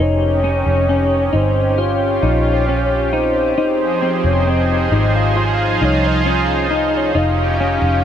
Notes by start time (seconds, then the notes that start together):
Already playing: C#4 D#4
0.00 F1 D#4 G4 C#5
0.44 C#4
0.66 F1
0.89 C#4
1.33 G1 D#4 C5
1.78 F4 C#5
2.23 A#1 D#4
2.68 C#4
3.13 D#4 C5
3.57 F1 F3 D#4 G#4 C5
4.02 C4
4.24 F1 C#5
4.47 C4 D#5
4.92 G#1 D#4
5.16 F5
5.36 F4 F5
5.81 C2 D#4 C#5
6.07 D#5
6.26 C#4 D#5
6.71 D#4
6.97 C#5
7.14 F1 C#4 D#4 G4 F5
7.60 C#4
7.82 F1